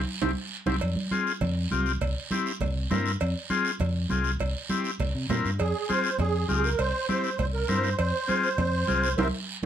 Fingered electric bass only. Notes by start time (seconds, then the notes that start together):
0.23 C2
0.68 C2
0.82 F2
1.42 F2
1.72 C2
2.02 C2
2.61 C2
2.91 G2
3.21 F2
3.80 F2
4.11 C2
4.40 C2
5.00 C2
5.15 C3
5.30 A#2
5.45 G2
5.60 F2
6.19 F2
6.50 C#2
6.79 C2
7.39 C2
7.69 G2
7.99 F2
8.58 F2
8.89 C2
9.19 C2